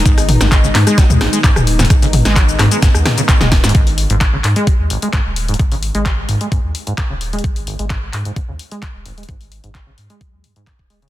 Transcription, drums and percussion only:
0.00 closed hi-hat medium
0.06 kick loud
0.06 closed hi-hat medium
0.06 shaker medium
0.18 cross-stick medium
0.18 open hi-hat medium
0.18 shaker soft
0.29 open hi-hat loud
0.29 mid tom medium
0.41 cross-stick medium
0.41 snare medium
0.41 closed hi-hat medium
0.41 shaker medium
0.52 kick loud
0.52 cross-stick medium
0.52 clap loud
0.52 closed hi-hat medium
0.52 shaker medium
0.64 shaker soft
0.75 snare soft
0.75 clap medium
0.75 open hi-hat loud
0.87 cross-stick medium
0.87 closed hi-hat medium
0.87 shaker medium
0.98 kick loud
0.98 snare medium
0.98 closed hi-hat medium
0.98 shaker medium
1.10 mid tom medium
1.10 shaker soft
1.21 cross-stick medium
1.21 snare medium
1.21 open hi-hat loud
1.33 closed hi-hat medium
1.33 shaker medium
1.44 kick loud
1.44 clap loud
1.44 closed hi-hat medium
1.44 shaker medium
1.56 cross-stick medium
1.56 mid tom medium
1.56 shaker soft
1.67 open hi-hat loud
1.79 snare medium
1.79 closed hi-hat medium
1.79 mid tom medium
1.79 shaker medium
1.85 closed hi-hat medium
1.90 kick loud
1.90 cross-stick medium
1.90 closed hi-hat medium
1.90 shaker medium
2.02 open hi-hat medium
2.02 shaker soft
2.13 open hi-hat loud
2.13 mid tom loud
2.25 cross-stick medium
2.25 snare medium
2.25 closed hi-hat medium
2.25 shaker medium
2.36 kick loud
2.36 clap loud
2.36 closed hi-hat medium
2.36 shaker medium
2.49 shaker soft
2.59 cross-stick medium
2.59 snare soft
2.59 clap medium
2.59 open hi-hat loud
2.71 closed hi-hat medium
2.71 shaker medium
2.82 kick loud
2.82 snare medium
2.82 closed hi-hat medium
2.82 shaker medium
2.94 cross-stick medium
2.94 shaker soft
3.06 cross-stick medium
3.06 snare medium
3.06 open hi-hat loud
3.06 mid tom loud
3.18 closed hi-hat medium
3.18 shaker medium
3.29 kick loud
3.29 cross-stick medium
3.29 clap loud
3.29 closed hi-hat medium
3.29 shaker medium
3.41 snare medium
3.41 mid tom loud
3.41 shaker soft
3.52 kick medium
3.52 snare medium
3.52 open hi-hat loud
3.64 snare medium
3.64 closed hi-hat medium
3.64 shaker medium
3.69 closed hi-hat medium
3.75 kick loud
3.75 closed hi-hat medium
3.87 open hi-hat medium
3.98 open hi-hat loud
4.10 closed hi-hat medium
4.21 kick loud
4.21 clap loud
4.21 closed hi-hat medium
4.44 clap medium
4.44 open hi-hat loud
4.56 closed hi-hat medium
4.67 kick loud
4.67 closed hi-hat medium
4.90 open hi-hat loud
5.02 closed hi-hat medium
5.13 kick loud
5.13 clap loud
5.13 closed hi-hat medium
5.36 open hi-hat loud
5.48 closed hi-hat soft
5.54 closed hi-hat medium
5.59 kick loud
5.59 closed hi-hat medium
5.72 open hi-hat medium
5.83 open hi-hat loud
5.95 closed hi-hat medium
6.06 kick loud
6.06 clap loud
6.06 closed hi-hat medium
6.29 open hi-hat loud
6.41 closed hi-hat medium
6.52 kick loud
6.52 closed hi-hat medium
6.75 open hi-hat loud
6.87 closed hi-hat medium
6.98 kick loud
6.98 clap loud
6.98 closed hi-hat medium
7.21 open hi-hat loud
7.33 closed hi-hat soft
7.39 closed hi-hat medium
7.44 kick loud
7.44 closed hi-hat medium
7.56 open hi-hat medium
7.67 open hi-hat loud
7.79 closed hi-hat soft
7.90 kick loud
7.90 clap loud
7.90 closed hi-hat medium
8.13 clap medium
8.13 open hi-hat loud
8.25 closed hi-hat soft
8.36 kick loud
8.36 closed hi-hat medium
8.59 open hi-hat loud
8.71 closed hi-hat medium
8.82 kick loud
8.82 clap loud
8.82 closed hi-hat medium
9.06 open hi-hat loud
9.18 closed hi-hat soft
9.23 closed hi-hat medium
9.29 kick loud
9.29 closed hi-hat medium
9.41 open hi-hat medium
9.52 open hi-hat loud
9.64 closed hi-hat soft
9.75 kick loud
9.75 clap loud
9.75 closed hi-hat medium
9.98 open hi-hat loud
10.10 closed hi-hat soft
10.21 kick loud
10.21 closed hi-hat medium
10.44 open hi-hat loud
10.56 closed hi-hat soft
10.67 kick loud
10.67 clap loud
10.67 closed hi-hat medium
10.79 kick medium
10.90 open hi-hat loud
11.02 closed hi-hat soft

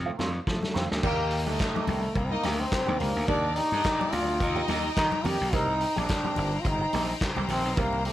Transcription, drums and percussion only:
0.19 snare medium
0.19 high conga medium
0.47 kick loud
0.47 snare medium
0.63 snare medium
0.63 muted conga soft
0.63 high conga medium
0.75 snare loud
0.75 low conga medium
0.92 snare medium
1.03 kick loud
1.03 crash loud
1.31 open hi-hat medium
1.47 high conga medium
1.59 kick loud
1.59 snare loud
1.59 clap medium
1.59 closed hi-hat medium
1.59 muted conga soft
1.76 muted conga soft
1.76 high conga medium
1.87 open hi-hat medium
1.87 high conga medium
1.87 low conga medium
2.15 kick medium
2.15 closed hi-hat medium
2.15 muted conga soft
2.43 snare soft
2.43 open hi-hat medium
2.43 high conga medium
2.72 kick loud
2.72 snare loud
2.72 clap loud
2.72 closed hi-hat medium
2.88 high conga medium
3.00 open hi-hat medium
3.00 high conga medium
3.00 low conga medium
3.28 kick loud
3.28 closed hi-hat medium
3.56 open hi-hat medium
3.72 high conga medium
3.84 kick loud
3.84 snare loud
3.84 clap loud
3.84 closed hi-hat medium
3.84 muted conga soft
4.01 muted conga soft
4.01 high conga medium
4.12 open hi-hat medium
4.12 high conga medium
4.12 low conga medium
4.40 kick loud
4.40 closed hi-hat medium
4.40 muted conga soft
4.56 muted conga soft
4.68 snare soft
4.68 open hi-hat medium
4.68 high conga medium
4.96 kick loud
4.96 snare loud
4.96 clap loud
4.96 closed hi-hat medium
5.12 muted conga soft
5.12 high conga medium
5.25 open hi-hat medium
5.25 high conga medium
5.25 low conga medium
5.53 kick loud
5.53 closed hi-hat medium
5.53 muted conga soft
5.80 open hi-hat medium
5.96 high conga medium
6.09 kick loud
6.09 snare loud
6.09 clap medium
6.09 closed hi-hat medium
6.09 muted conga soft
6.25 high conga medium
6.36 open hi-hat medium
6.36 high conga medium
6.36 low conga medium
6.65 kick loud
6.65 closed hi-hat medium
6.93 open hi-hat medium
6.93 high conga medium
7.21 kick loud
7.21 snare loud
7.21 clap loud
7.21 closed hi-hat medium
7.21 muted conga soft
7.36 high conga medium
7.49 open hi-hat medium
7.49 high conga medium
7.49 low conga medium
7.77 kick loud
7.77 closed hi-hat medium
7.77 muted conga soft
7.93 muted conga soft
8.05 open hi-hat medium

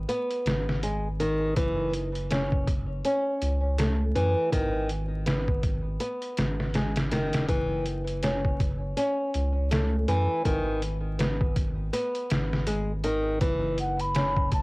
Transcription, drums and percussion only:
0.09 closed hi-hat medium
0.31 closed hi-hat soft
0.46 snare loud
0.46 closed hi-hat medium
0.69 snare soft
0.83 closed hi-hat medium
1.20 closed hi-hat medium
1.56 kick loud
1.56 closed hi-hat medium
1.94 closed hi-hat medium
2.15 closed hi-hat soft
2.31 snare loud
2.31 closed hi-hat medium
2.52 kick medium
2.68 kick medium
2.68 closed hi-hat medium
3.05 closed hi-hat medium
3.42 closed hi-hat medium
3.79 snare loud
3.79 closed hi-hat medium
4.16 closed hi-hat medium
4.53 kick medium
4.53 closed hi-hat medium
4.89 closed hi-hat medium
5.26 snare loud
5.26 closed hi-hat medium
5.48 kick medium
5.63 kick medium
5.63 closed hi-hat medium
6.00 closed hi-hat medium
6.22 closed hi-hat soft
6.37 snare loud
6.37 closed hi-hat medium
6.60 snare soft
6.74 snare loud
6.74 closed hi-hat medium
6.96 snare medium
6.96 closed hi-hat medium
7.12 snare loud
7.12 closed hi-hat medium
7.33 snare loud
7.33 closed hi-hat medium
7.49 kick loud
7.49 closed hi-hat medium
7.86 closed hi-hat medium
8.07 closed hi-hat soft
8.22 snare loud
8.22 closed hi-hat medium
8.45 kick medium
8.60 kick medium
8.60 closed hi-hat medium
8.97 closed hi-hat medium
9.34 closed hi-hat medium
9.71 snare loud
9.71 closed hi-hat medium
10.08 closed hi-hat medium
10.45 kick loud
10.45 closed hi-hat medium
10.82 closed hi-hat medium
11.19 snare loud
11.19 closed hi-hat medium
11.41 kick medium
11.56 kick medium
11.56 closed hi-hat medium
11.93 closed hi-hat medium
12.15 closed hi-hat soft
12.30 snare loud
12.30 closed hi-hat medium
12.53 snare soft
12.67 closed hi-hat medium
13.04 closed hi-hat medium
13.41 kick loud
13.41 closed hi-hat medium
13.78 closed hi-hat medium
14.00 closed hi-hat soft
14.15 snare loud
14.15 closed hi-hat medium
14.37 kick medium
14.52 kick medium
14.52 closed hi-hat medium

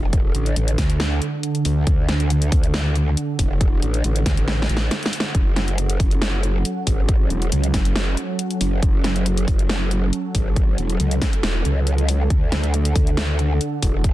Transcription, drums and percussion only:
0.13 kick loud
0.13 closed hi-hat medium
0.35 closed hi-hat medium
0.46 closed hi-hat soft
0.56 closed hi-hat medium
0.68 closed hi-hat medium
0.78 kick medium
0.78 snare medium
0.78 open hi-hat medium
0.90 closed hi-hat medium
1.00 snare loud
1.22 closed hi-hat medium
1.43 closed hi-hat medium
1.55 closed hi-hat soft
1.65 open hi-hat medium
1.87 kick loud
1.87 closed hi-hat medium
2.09 snare medium
2.09 closed hi-hat medium
2.20 closed hi-hat soft
2.30 closed hi-hat medium
2.42 closed hi-hat medium
2.52 kick loud
2.52 open hi-hat medium
2.63 closed hi-hat medium
2.74 snare loud
2.96 closed hi-hat medium
3.17 closed hi-hat medium
3.39 kick medium
3.39 open hi-hat loud
3.61 kick loud
3.61 closed hi-hat medium
3.82 closed hi-hat medium
3.94 closed hi-hat soft
4.04 closed hi-hat medium
4.16 closed hi-hat medium
4.26 kick medium
4.26 snare medium
4.26 open hi-hat medium
4.37 closed hi-hat medium
4.48 snare medium
4.62 snare medium
4.69 closed hi-hat medium
4.77 snare medium
4.91 snare medium
4.91 closed hi-hat medium
5.03 snare loud
5.03 closed hi-hat soft
5.13 open hi-hat loud
5.20 snare loud
5.35 kick loud
5.35 closed hi-hat medium
5.56 snare medium
5.56 closed hi-hat medium
5.68 closed hi-hat soft
5.78 closed hi-hat medium
5.90 closed hi-hat medium
6.00 kick loud
6.00 open hi-hat medium
6.11 closed hi-hat medium
6.22 snare loud
6.43 closed hi-hat medium
6.65 closed hi-hat medium
6.87 kick medium
6.87 open hi-hat loud
7.09 kick loud
7.09 closed hi-hat medium
7.30 closed hi-hat medium
7.42 closed hi-hat soft
7.52 closed hi-hat medium
7.64 closed hi-hat medium
7.74 kick medium
7.74 snare medium
7.74 open hi-hat medium
7.85 closed hi-hat medium
7.96 snare loud
8.17 closed hi-hat medium
8.39 closed hi-hat medium
8.51 closed hi-hat soft
8.61 open hi-hat loud
8.83 kick loud
8.83 closed hi-hat medium
9.04 snare medium
9.04 closed hi-hat medium
9.16 closed hi-hat soft
9.26 closed hi-hat medium
9.37 closed hi-hat medium
9.48 kick loud
9.48 open hi-hat medium
9.59 closed hi-hat medium
9.69 snare loud
9.91 closed hi-hat medium
10.13 closed hi-hat medium
10.35 kick medium
10.35 open hi-hat medium
10.56 kick loud
10.56 closed hi-hat medium
10.78 closed hi-hat medium
10.90 closed hi-hat soft
11.00 closed hi-hat medium
11.11 closed hi-hat medium
11.22 kick medium
11.22 snare medium
11.22 open hi-hat medium
11.33 closed hi-hat medium
11.43 snare loud
11.65 closed hi-hat medium
11.87 closed hi-hat medium
11.98 closed hi-hat soft
12.09 open hi-hat medium
12.30 kick loud
12.30 closed hi-hat medium
12.52 snare medium
12.52 closed hi-hat medium
12.64 closed hi-hat soft
12.74 closed hi-hat medium
12.85 closed hi-hat medium
12.96 kick loud
12.96 open hi-hat medium
13.07 closed hi-hat medium
13.17 snare loud
13.39 closed hi-hat medium
13.61 closed hi-hat medium
13.83 kick medium
13.83 open hi-hat medium
14.04 kick loud
14.04 closed hi-hat medium

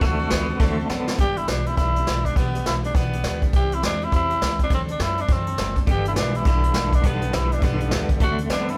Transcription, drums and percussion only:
0.01 kick loud
0.01 open hi-hat soft
0.30 snare loud
0.30 open hi-hat medium
0.60 kick loud
0.60 open hi-hat soft
0.89 snare medium
1.08 snare loud
1.18 kick loud
1.18 closed hi-hat medium
1.37 closed hi-hat medium
1.48 snare loud
1.48 closed hi-hat medium
1.66 closed hi-hat medium
1.77 kick loud
1.77 closed hi-hat medium
1.96 closed hi-hat medium
2.07 snare loud
2.07 closed hi-hat medium
2.25 kick medium
2.25 closed hi-hat medium
2.36 kick loud
2.36 closed hi-hat medium
2.55 closed hi-hat medium
2.66 snare loud
2.66 closed hi-hat medium
2.84 closed hi-hat medium
2.95 kick loud
2.95 closed hi-hat medium
3.13 closed hi-hat medium
3.24 snare loud
3.24 closed hi-hat medium
3.42 kick medium
3.42 closed hi-hat medium
3.53 kick loud
3.53 closed hi-hat medium
3.72 closed hi-hat medium
3.83 snare loud
3.83 closed hi-hat medium
4.02 closed hi-hat medium
4.12 kick loud
4.12 closed hi-hat medium
4.30 closed hi-hat medium
4.42 snare loud
4.42 closed hi-hat medium
4.59 kick medium
4.59 closed hi-hat medium
4.70 kick loud
4.70 closed hi-hat medium
4.88 closed hi-hat medium
5.00 snare loud
5.00 closed hi-hat medium
5.17 closed hi-hat medium
5.28 kick loud
5.28 closed hi-hat medium
5.47 closed hi-hat medium
5.58 snare loud
5.58 closed hi-hat medium
5.76 kick medium
5.76 closed hi-hat medium
5.87 kick loud
5.87 closed hi-hat medium
6.05 closed hi-hat medium
6.16 snare loud
6.16 closed hi-hat medium
6.34 closed hi-hat medium
6.45 kick loud
6.45 closed hi-hat medium
6.64 closed hi-hat medium
6.74 snare loud
6.74 closed hi-hat medium
6.93 kick medium
6.93 closed hi-hat medium
7.04 kick loud
7.04 closed hi-hat medium
7.22 closed hi-hat medium
7.33 snare loud
7.33 closed hi-hat medium
7.52 closed hi-hat medium
7.62 kick loud
7.62 closed hi-hat medium
7.80 closed hi-hat medium
7.91 snare loud
7.91 closed hi-hat medium
8.09 kick medium
8.09 closed hi-hat medium
8.20 kick loud
8.20 closed hi-hat medium
8.38 closed hi-hat medium
8.50 snare loud
8.50 closed hi-hat medium
8.68 closed hi-hat medium

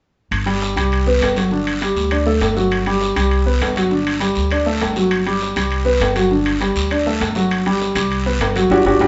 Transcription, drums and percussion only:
0.32 high timbale medium
0.32 long guiro medium
0.47 high timbale medium
0.62 low timbale medium
0.62 short guiro medium
0.77 high timbale medium
0.77 short guiro medium
0.92 high timbale medium
0.92 long guiro medium
1.22 high timbale medium
1.22 low timbale medium
1.22 short guiro medium
1.36 high timbale medium
1.36 short guiro medium
1.51 long guiro medium
1.67 high timbale medium
1.81 high timbale medium
1.81 low timbale medium
1.81 short guiro medium
1.96 short guiro medium
2.11 high timbale medium
2.11 long guiro medium
2.41 high timbale medium
2.41 low timbale medium
2.41 short guiro medium
2.57 short guiro medium
2.71 high timbale medium
2.71 long guiro medium
2.86 high timbale medium
3.01 low timbale medium
3.01 short guiro medium
3.16 high timbale medium
3.16 short guiro medium
3.31 high timbale medium
3.31 long guiro medium
3.61 high timbale medium
3.61 low timbale medium
3.61 short guiro medium
3.76 high timbale medium
3.76 short guiro medium
3.91 long guiro medium
4.07 high timbale medium
4.21 high timbale medium
4.21 low timbale medium
4.21 short guiro medium
4.35 short guiro medium
4.51 high timbale medium
4.51 long guiro medium
4.81 high timbale medium
4.81 low timbale medium
4.81 short guiro soft
4.96 short guiro medium
5.11 high timbale medium
5.11 long guiro medium
5.27 high timbale medium
5.41 low timbale soft
5.41 short guiro medium
5.56 high timbale medium
5.56 short guiro medium
5.71 high timbale medium
5.71 long guiro medium
6.00 high timbale medium
6.00 low timbale medium
6.00 short guiro medium
6.16 high timbale medium
6.16 short guiro medium
6.31 long guiro medium
6.46 high timbale medium
6.61 high timbale medium
6.61 low timbale medium
6.61 short guiro medium
6.76 short guiro medium
6.90 high timbale medium
6.90 long guiro medium
7.20 high timbale medium
7.20 low timbale medium
7.20 short guiro medium
7.35 short guiro medium
7.51 high timbale medium
7.51 long guiro medium
7.66 high timbale medium
7.80 low timbale medium
7.80 short guiro medium
7.95 high timbale medium
7.95 short guiro medium
8.11 high timbale medium
8.11 long guiro medium
8.40 high timbale medium
8.40 low timbale medium
8.40 short guiro medium
8.56 high timbale medium
8.56 short guiro medium
8.70 high timbale medium
8.70 long guiro medium
8.85 high timbale medium
8.85 long guiro medium
9.00 high timbale medium
9.00 long guiro medium

